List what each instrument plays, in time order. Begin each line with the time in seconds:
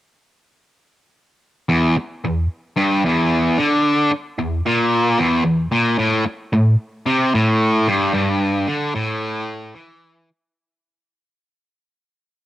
1.69 distorted electric guitar E2
1.97 muted distorted electric guitar stroke
2.25 distorted electric guitar E2
2.76 distorted electric guitar G2
3.05 distorted electric guitar E2
3.58 distorted electric guitar D3
4.11 muted distorted electric guitar stroke
4.39 distorted electric guitar E2
4.66 distorted electric guitar A#2
5.19 distorted electric guitar E2
5.45 distorted electric guitar E2
5.72 distorted electric guitar A#2
5.99 distorted electric guitar A2
6.26 muted distorted electric guitar stroke
6.53 distorted electric guitar A2
7.06 distorted electric guitar C3
7.34 distorted electric guitar A2
7.88 distorted electric guitar G2
8.14 distorted electric guitar G2
8.68 distorted electric guitar D3
8.95 distorted electric guitar A2
9.75 distorted electric guitar E3